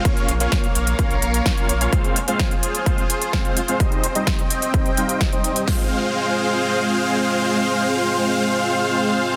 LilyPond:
<<
  \new Staff \with { instrumentName = "Analog synth pad" } { \time 4/4 \key f \minor \tempo 4 = 128 <bes bes' des'' f''>1 | <f' aes' c''>1 | <c' ees'' g''>1 | <aes' c'' f''>1~ |
<aes' c'' f''>1 | }
  \new Staff \with { instrumentName = "Supersaw synth" } { \time 4/4 \key f \minor <bes des' f' des'' f''>8 r16 <bes des' f' des'' f''>8 r8. <bes des' f' des'' f''>16 r8. <bes des' f' des'' f''>8 r16 <bes des' f' des'' f''>16 | <c' f' c'' f''>8 r16 <aes c' f' c'' f''>8 r8. <aes c' f' c'' f''>16 r8. <aes c' f' c'' f''>8 r16 <aes c' f' c'' f''>16 | r8. <g c' ees' c'' ees''>8 r8. <g c' ees' c'' ees''>16 r16 <g c' ees' c'' f''>8. <g c' ees' c'' ees''>8. | <aes c' f' c'' f''>1~ |
<aes c' f' c'' f''>1 | }
  \new Staff \with { instrumentName = "Sub bass" } { \clef bass \time 4/4 \key f \minor r8 bes,,8 r8 bes,,8 r16 bes,,16 bes,,8 r8 bes,,8 | r1 | r1 | r1 |
r1 | }
  \new DrumStaff \with { instrumentName = "Drums" } \drummode { \time 4/4 <hh bd>16 hh16 hh16 hh16 <hh bd sn>16 hh16 hh16 hh16 <hh bd>16 hh16 hh16 hh16 <hh bd sn>16 hh16 hh16 hh16 | <hh bd>16 hh16 hh16 hh16 <hh bd sn>16 hh16 hh16 hh16 <hh bd>16 hh16 hh16 hh16 <hh bd sn>16 hh16 hh16 hh16 | <hh bd>16 hh16 hh16 hh16 <hh bd sn>16 hh16 hh16 hh16 <hh bd>16 hh16 hh16 hh16 <hh bd sn>16 hh16 hh16 hh16 | <hho bd sn>4 r4 r4 r4 |
r4 r4 r4 r4 | }
>>